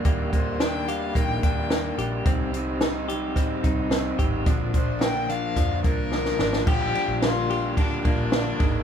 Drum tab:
CC |----------------|----------------|----------------|x---------------|
RD |----------------|----------------|----------------|--x-x-x-x-x-x-x-|
HH |x-x-x-x-x-x-x-x-|x-x-x-x-x-x-x-x-|x-x-x-x-x-x-----|----------------|
SD |----o-------o---|----o-------o---|----o-------oooo|----o-------o---|
BD |o-o-----o-o-----|o-------o-o---o-|o-o-----o-o-----|o-------o-o---o-|